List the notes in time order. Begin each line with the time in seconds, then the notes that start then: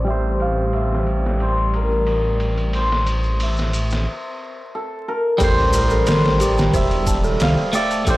Already playing: A1 C4 A4 C5 D5
0.05 G3 G4 E5, ride, shaker
0.10 C5
0.40 F5, ride, shaker
0.58 shaker
0.73 E5, ride, shaker
0.92 snare
1.06 ride, shaker
1.24 snare, shaker
1.40 C5, ride, shaker
1.58 ride
1.73 A#4, ride, shaker
1.91 shaker
2.06 ride, shaker
2.40 ride, shaker
2.57 ride, shaker
2.73 C5, ride, shaker
2.92 snare
3.07 ride, shaker
3.23 shaker
3.40 E5, ride, shaker
3.57 snare, shaker
3.73 ride, shaker
3.91 snare, shaker
4.75 A4
5.08 A4 A#4
5.38 A1 G3 G4 A4 C5, kick, ride, sub drop, shaker
5.44 C5
5.73 A#4, ride, shaker
5.90 A4, shaker
6.06 A4 C5, snare, ride, shaker
6.24 A4, snare
6.40 G4 D5, ride, shaker
6.58 A5, snare, shaker
6.73 E1 C5 E5, kick, ride, shaker
6.91 ride
7.07 A5, kick, ride, shaker
7.24 A4, shaker
7.40 C2 F5, snare, ride, shaker
7.73 A3 G4 D5 E5, ride, shaker
7.91 A5, ride, shaker
8.05 A1 A3 G4 A4 D5, kick, ride, shaker
8.10 C5